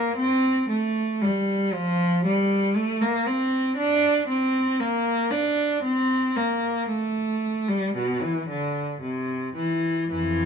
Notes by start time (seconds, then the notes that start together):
Already playing: A#3
0.16 C4
0.69 A3
1.21 G3
1.73 F3
2.25 G3
2.76 A3
3.01 A#3
3.26 C4
3.77 D4
4.27 C4
4.80 A#3
5.31 D4
5.83 C4
6.36 A#3
6.88 A3
7.69 G3
7.95 B2
8.21 E3
8.49 D3
9.01 C3
9.55 E3
10.11 F2 E3